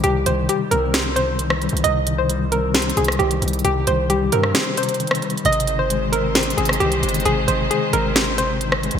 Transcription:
0.00 0.25 C2 loud
0.00 1.15 C3 medium
0.00 0.25 D#3 medium
0.00 0.48 G3 medium
0.00 0.25 G4 loud
0.00 0.26 C5 loud
0.00 closed hi-hat medium
0.26 0.48 C2 loud
0.26 1.38 D#3 medium
0.26 0.47 C5 medium
0.26 closed hi-hat medium
0.49 1.61 G3 loud
0.49 0.70 G4 medium
0.49 closed hi-hat medium
0.71 1.69 C2 loud
0.71 1.84 C4 medium
0.71 1.14 A#4 medium
0.71 closed hi-hat medium
0.94 2.07 C5 medium
0.94 snare loud
0.94 closed hi-hat medium
1.16 1.83 C3 medium
1.16 1.80 C5 medium
1.16 closed hi-hat medium
1.39 2.06 D#3 medium
1.39 closed hi-hat medium
1.50 cross-stick loud
1.62 2.28 G3 medium
1.62 closed hi-hat soft
1.62 open hi-hat medium
1.69 1.84 C2 loud
1.69 closed hi-hat medium
1.77 closed hi-hat medium
1.84 2.93 C2 loud
1.84 2.96 C3 loud
1.84 2.16 D#5 loud
1.84 closed hi-hat medium
2.07 3.18 D#3 medium
2.07 closed hi-hat medium
2.18 2.50 C5 medium
2.29 3.41 G3 medium
2.29 closed hi-hat medium
2.52 3.65 C4 medium
2.52 2.73 A#4 medium
2.52 closed hi-hat medium
2.74 3.87 C5 loud
2.74 snare loud
2.74 closed hi-hat medium
2.82 closed hi-hat medium
2.90 closed hi-hat medium
2.97 3.19 C2 loud
2.97 3.63 C3 medium
2.97 3.18 G#4 medium
2.97 closed hi-hat medium
3.05 cross-stick medium
3.05 closed hi-hat medium
3.12 closed hi-hat medium
3.19 3.41 C2 loud
3.19 3.86 D#3 medium
3.19 3.62 G4 medium
3.19 closed hi-hat soft
3.31 closed hi-hat medium
3.42 3.64 C2 loud
3.42 4.09 G3 medium
3.42 closed hi-hat medium
3.48 closed hi-hat medium
3.53 closed hi-hat medium
3.59 closed hi-hat soft
3.65 3.86 C2 loud
3.65 4.76 C3 medium
3.65 3.86 G4 loud
3.65 closed hi-hat medium
3.87 4.30 C2 loud
3.87 4.99 D#3 medium
3.87 4.08 C5 medium
3.87 closed hi-hat medium
4.10 5.21 G3 medium
4.10 4.31 G4 medium
4.10 closed hi-hat medium
4.32 4.54 G2 loud
4.32 5.45 C4 medium
4.32 4.75 A#4 medium
4.32 closed hi-hat medium
4.43 cross-stick medium
4.55 5.45 C5 loud
4.55 snare loud
4.55 closed hi-hat medium
4.77 5.44 C3 medium
4.77 5.41 C5 medium
4.77 closed hi-hat medium
4.83 closed hi-hat medium
4.89 closed hi-hat medium
4.94 closed hi-hat medium
5.00 5.45 D#3 medium
5.00 closed hi-hat medium
5.07 cross-stick loud
5.07 closed hi-hat medium
5.15 closed hi-hat medium
5.22 5.45 G3 medium
5.22 closed hi-hat soft
5.22 open hi-hat medium
5.30 closed hi-hat soft
5.38 closed hi-hat medium
5.45 6.54 G#1 loud
5.45 6.57 C3 loud
5.45 8.99 D#3 medium
5.45 8.99 G#3 medium
5.45 8.99 C4 medium
5.45 8.99 C5 medium
5.45 5.77 D#5 loud
5.45 closed hi-hat medium
5.53 closed hi-hat medium
5.60 closed hi-hat medium
5.67 6.79 D#3 medium
5.67 closed hi-hat medium
5.79 6.11 C5 medium
5.90 7.02 G#3 medium
5.90 closed hi-hat medium
6.12 7.26 C4 medium
6.12 6.34 A#4 medium
6.12 closed hi-hat medium
6.35 7.48 C5 loud
6.35 snare loud
6.35 closed hi-hat medium
6.43 closed hi-hat medium
6.50 closed hi-hat medium
6.57 6.79 G#1 loud
6.57 7.24 C3 medium
6.57 6.79 G#4 medium
6.57 closed hi-hat medium
6.65 cross-stick medium
6.65 closed hi-hat medium
6.73 closed hi-hat medium
6.80 7.02 C2 loud
6.80 7.47 D#3 medium
6.80 7.23 G4 loud
6.80 closed hi-hat soft
6.92 closed hi-hat medium
7.03 7.25 G1 loud
7.03 7.69 G#3 medium
7.03 closed hi-hat medium
7.09 closed hi-hat medium
7.14 closed hi-hat medium
7.20 closed hi-hat soft
7.25 7.47 G#1 loud
7.25 8.37 C3 loud
7.25 7.47 G#4 loud
7.25 closed hi-hat medium
7.48 7.70 G#1 loud
7.48 8.60 D#3 medium
7.48 7.69 C5 medium
7.48 closed hi-hat medium
7.71 8.82 G#3 medium
7.71 7.92 G#4 medium
7.71 closed hi-hat medium
7.93 8.91 G#1 loud
7.93 8.99 C4 medium
7.93 8.36 A#4 medium
7.93 closed hi-hat medium
8.16 8.99 C5 loud
8.16 snare loud
8.16 closed hi-hat medium
8.38 8.99 C3 medium
8.38 8.99 C5 medium
8.38 closed hi-hat medium
8.61 8.99 D#3 medium
8.61 closed hi-hat medium
8.72 cross-stick loud
8.83 8.99 G#3 medium
8.83 closed hi-hat soft
8.83 open hi-hat medium
8.91 8.99 G#1 loud
8.91 closed hi-hat medium

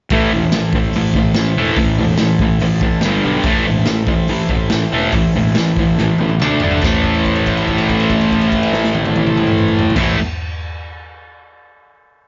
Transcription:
0.10 0.24 A1 medium
0.10 0.31 A2 medium
0.10 0.31 E3 medium
0.10 0.32 A3 medium
0.10 2.99 E4 medium
0.10 2.99 A4 medium
0.10 kick loud
0.10 open hi-hat medium
0.15 3.01 C5 medium
0.33 0.46 E1 medium
0.33 0.51 A2 medium
0.33 0.52 E3 medium
0.52 0.66 A1 medium
0.52 0.72 A2 medium
0.52 0.72 E3 medium
0.52 snare loud
0.52 open hi-hat medium
0.52 tambourine medium
0.73 0.87 A1 medium
0.73 0.93 A2 medium
0.73 0.93 E3 medium
0.73 kick medium
0.93 1.08 A1 medium
0.93 1.14 A2 medium
0.93 1.14 E3 medium
0.93 open hi-hat medium
1.14 1.28 A1 medium
1.14 1.35 A2 medium
1.14 1.35 E3 medium
1.14 kick medium
1.14 snare soft
1.34 1.49 A1 medium
1.34 1.55 A2 medium
1.34 1.55 E3 medium
1.34 snare loud
1.34 open hi-hat medium
1.34 tambourine medium
1.57 1.70 E1 medium
1.57 1.77 A2 medium
1.57 1.77 E3 medium
1.57 1.77 A3 loud
1.76 1.90 A1 medium
1.76 1.97 A2 medium
1.76 1.97 E3 medium
1.76 kick loud
1.76 open hi-hat medium
1.99 2.13 E1 medium
1.99 2.18 A2 medium
1.99 2.18 E3 medium
2.17 2.33 A1 medium
2.17 2.38 A2 medium
2.17 2.38 E3 medium
2.17 snare loud
2.17 open hi-hat medium
2.17 tambourine medium
2.39 2.53 A1 medium
2.39 2.60 A2 medium
2.39 2.60 E3 medium
2.39 kick medium
2.59 2.75 A1 medium
2.59 2.80 A2 medium
2.59 2.80 E3 medium
2.59 open hi-hat soft
2.80 3.05 A1 medium
2.80 3.01 A2 medium
2.80 3.01 E3 medium
2.80 3.01 A5 medium
2.80 kick medium
3.00 3.22 G2 medium
3.00 3.23 D3 medium
3.00 3.44 D4 medium
3.00 3.44 G4 medium
3.00 3.45 D5 medium
3.00 3.21 G5 medium
3.00 snare loud
3.00 open hi-hat medium
3.00 tambourine medium
3.05 3.17 G1 medium
3.05 3.24 G3 medium
3.23 3.38 B1 medium
3.23 3.44 G2 medium
3.23 3.44 D3 medium
3.23 3.44 G3 medium
3.23 3.43 F5 medium
3.41 3.57 A1 medium
3.41 6.34 E4 medium
3.41 6.36 A4 medium
3.41 6.36 C5 medium
3.41 kick loud
3.41 open hi-hat medium
3.46 3.65 A2 medium
3.46 3.65 E3 loud
3.46 3.66 A3 loud
3.66 3.80 E1 medium
3.66 3.85 A2 medium
3.66 3.85 E3 medium
3.85 4.01 A1 medium
3.85 4.06 A2 medium
3.85 4.06 E3 medium
3.85 snare loud
3.85 open hi-hat medium
3.85 tambourine medium
4.07 4.21 A1 medium
4.07 4.27 A2 medium
4.07 4.27 E3 medium
4.07 kick medium
4.27 4.43 A1 medium
4.27 4.48 A2 medium
4.27 4.48 E3 medium
4.27 open hi-hat medium
4.49 4.63 A1 medium
4.49 4.69 A2 medium
4.49 4.69 E3 medium
4.49 kick medium
4.70 4.85 A1 medium
4.70 4.90 A2 medium
4.70 4.90 E3 medium
4.70 snare loud
4.70 open hi-hat medium
4.70 tambourine medium
4.92 5.06 E1 medium
4.92 5.12 A2 medium
4.92 5.13 E3 medium
4.92 5.13 A3 medium
5.12 5.27 A1 loud
5.12 5.33 A2 medium
5.12 5.33 E3 medium
5.12 kick loud
5.12 open hi-hat medium
5.36 5.49 E1 medium
5.36 5.54 A2 medium
5.36 5.55 E3 medium
5.55 5.70 A1 medium
5.55 5.75 A2 medium
5.55 5.75 E3 medium
5.55 snare loud
5.55 open hi-hat medium
5.55 tambourine medium
5.77 5.90 A1 medium
5.77 5.97 A2 medium
5.77 5.97 E3 medium
5.77 kick medium
5.98 6.12 A1 medium
5.98 6.18 A2 medium
5.98 6.18 E3 medium
5.98 snare medium
6.18 6.41 A1 medium
6.18 6.39 A2 medium
6.18 6.40 E3 medium
6.18 high tom medium
6.29 high tom medium
6.39 6.54 D2 medium
6.39 6.61 D3 medium
6.39 6.61 A3 loud
6.39 6.82 D4 medium
6.39 6.62 D4 loud
6.39 6.80 A4 medium
6.39 6.83 D5 medium
6.39 mid tom medium
6.39 tambourine medium
6.60 6.76 G1 medium
6.60 6.82 D3 medium
6.60 6.83 A3 medium
6.60 6.83 D4 medium
6.60 floor tom loud
6.71 floor tom medium
6.80 9.88 A1 medium
6.80 9.96 A2 medium
6.80 9.87 E4 medium
6.80 9.87 A4 medium
6.80 9.87 C5 medium
6.80 kick loud
6.80 crash medium
6.80 tambourine medium
6.86 9.98 E3 loud
6.86 10.00 A3 loud
7.04 kick medium
7.04 crash soft
7.15 crash soft
7.25 kick medium
7.25 crash soft
7.35 crash soft
7.46 kick medium
7.46 crash medium
7.57 crash soft
7.67 kick medium
7.67 crash soft
7.78 crash soft
7.89 kick medium
7.89 crash soft
8.00 crash medium
8.10 kick medium
8.10 crash soft
8.21 crash medium
8.31 kick medium
8.31 crash soft
8.41 crash soft
8.52 kick medium
8.52 crash medium
8.63 crash medium
8.73 snare medium
8.84 snare medium
8.95 high tom medium
9.05 high tom medium
9.16 high tom loud
9.27 mid tom medium
9.37 mid tom medium
9.47 mid tom loud
9.58 mid tom loud
9.68 mid tom loud
9.79 floor tom loud
9.90 floor tom medium
9.95 10.15 A1 medium
9.95 10.16 A2 medium
9.95 10.17 E3 loud
9.95 10.14 E4 medium
9.95 10.14 A4 medium
9.95 10.14 C5 medium
9.95 kick loud
9.95 snare loud
9.95 crash loud
10.00 10.18 A3 loud

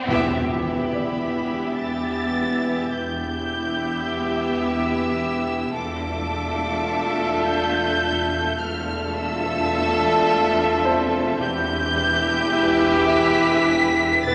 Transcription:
0.07 2.87 E1 medium
0.07 0.89 E2 medium
0.07 2.88 E2 medium
0.07 2.87 E3 medium
0.07 2.87 B3 medium
0.07 2.87 E4 medium
0.07 2.88 G4 medium
0.07 2.88 E5 medium
0.07 impact medium
0.65 1.74 B5 medium
0.93 2.59 D5 soft
1.78 2.92 A6 medium
2.91 5.71 E1 medium
2.91 5.71 E2 medium
2.91 5.72 E3 medium
2.91 5.71 B3 medium
2.91 5.72 B3 medium
2.91 5.71 E4 medium
2.91 5.71 G4 medium
2.91 5.71 E5 medium
2.91 4.62 G6 medium
4.63 5.75 E6 medium
5.72 8.54 E1 medium
5.72 8.54 E2 medium
5.72 8.53 A3 medium
5.72 8.39 D4 medium
5.72 8.39 F4 medium
5.72 8.53 F4 medium
5.72 8.54 A4 medium
5.72 8.54 E5 medium
5.72 7.41 D6 medium
7.45 8.56 G6 loud
8.56 11.37 E1 medium
8.56 11.37 E2 medium
8.56 11.37 A3 medium
8.56 11.36 D4 medium
8.56 11.36 F4 medium
8.56 11.37 A4 medium
8.56 11.37 E5 medium
8.56 9.15 F6 medium
9.15 11.13 E6 loud
10.85 12.50 C4 medium
10.85 12.51 C5 medium
11.39 14.20 E1 medium
11.39 14.20 E2 medium
11.39 14.19 E3 medium
11.39 14.19 E4 loud
11.39 14.20 E4 medium
11.39 14.20 G4 loud
11.39 14.20 B4 medium
11.39 14.20 E5 loud
11.39 13.06 G6 loud
13.11 14.24 B6 loud
14.23 14.35 E1 loud
14.23 14.35 E2 medium
14.23 14.35 E3 loud
14.23 14.35 B3 loud
14.23 14.35 E4 loud
14.23 14.35 G4 loud
14.23 14.35 E5 loud
14.23 14.35 A6 loud
14.27 14.35 B4 medium

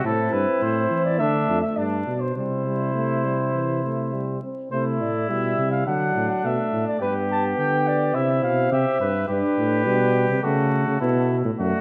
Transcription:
0.04 0.32 A2 medium
0.04 1.20 C4 medium
0.04 1.22 E4 medium
0.04 0.34 A4 medium
0.33 0.46 G2 medium
0.33 0.64 B4 medium
0.62 0.90 A2 medium
0.62 1.04 C5 medium
0.90 1.21 E3 medium
1.05 1.18 D5 medium
1.18 1.48 D3 medium
1.18 2.07 A3 medium
1.18 1.61 D4 medium
1.18 1.61 E5 medium
1.49 1.62 F2 medium
1.62 1.78 E5 medium
1.77 2.06 G2 medium
1.77 2.15 D4 medium
1.77 2.22 D5 medium
2.07 2.36 B2 medium
2.20 2.36 C5 medium
2.35 4.39 C3 medium
2.35 2.63 G3 medium
2.35 4.38 E4 medium
2.35 4.39 C5 medium
2.66 2.94 G3 medium
2.95 3.26 A3 medium
3.25 3.53 G3 medium
3.54 3.83 E3 soft
3.84 4.15 A3 medium
4.13 4.42 G3 soft
4.42 4.71 C4 soft
4.71 5.02 C3 medium
4.71 5.30 A3 medium
4.71 5.83 E4 medium
4.71 4.84 C5 medium
5.01 5.31 A2 medium
5.01 5.29 D5 medium
5.29 5.58 B2 medium
5.29 5.88 G3 medium
5.29 5.71 E5 medium
5.58 5.86 C3 medium
5.71 5.86 F5 medium
5.86 6.15 D3 medium
5.86 6.46 F#3 medium
5.86 6.98 D4 medium
5.86 6.29 F#5 medium
6.15 6.28 A2 medium
6.30 6.47 F#5 medium
6.44 6.57 B2 medium
6.44 7.01 A3 medium
6.44 6.87 E5 medium
6.72 6.85 A2 medium
6.88 7.01 D5 medium
7.00 7.57 G2 medium
7.00 8.16 B3 medium
7.00 8.16 G4 medium
7.00 7.14 B4 medium
7.31 7.44 A5 medium
7.58 8.13 D3 medium
7.58 7.89 G5 medium
7.87 8.16 D5 medium
8.14 8.43 C3 medium
8.14 9.12 C4 medium
8.14 8.70 E4 medium
8.14 8.43 E5 medium
8.43 8.71 B2 medium
8.43 8.72 F5 medium
8.71 8.85 C3 medium
8.71 8.99 G4 medium
8.71 9.28 E5 medium
9.00 9.28 G2 medium
9.00 9.28 B4 medium
9.28 9.42 G2 medium
9.28 9.85 D4 medium
9.28 10.45 G4 medium
9.28 10.41 B4 medium
9.57 9.88 A2 medium
9.86 10.29 B2 medium
9.86 10.42 G3 medium
10.29 10.43 C3 medium
10.43 10.86 C#3 medium
10.43 11.00 A3 medium
10.43 11.00 F#4 medium
10.43 11.29 A4 medium
10.87 11.01 C#3 medium
11.01 11.44 B2 medium
11.01 11.38 B3 medium
11.01 11.38 E4 medium
11.45 11.51 A2 medium
11.59 11.72 F#2 medium
11.59 11.81 A3 medium
11.59 11.81 F#4 medium
11.59 11.81 D5 medium

